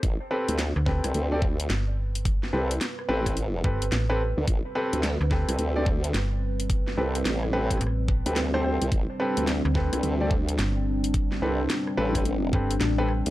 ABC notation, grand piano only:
X:1
M:4/4
L:1/16
Q:"Swing 16ths" 1/4=108
K:Am
V:1 name="Grand piano"
z2 [CGAB]2 z2 [CGAB]3 [CGAd] z6 | z2 [CGAB] z3 [CGAB]2 z2 [CGAB] z2 [CGAB] z2 | z2 [CGAB]2 z2 [CGAB]3 [CGAd] z6 | z2 [CGAB] z3 [CGAB]2 z3 [CGAB] z [CGAc] [CGAc] z |
z2 [CGAB]2 z2 [CGAB]3 [CGAd] z6 | z2 [CGAB] z3 [CGAB]2 z2 [CGAB] z2 [CGAB] z2 |]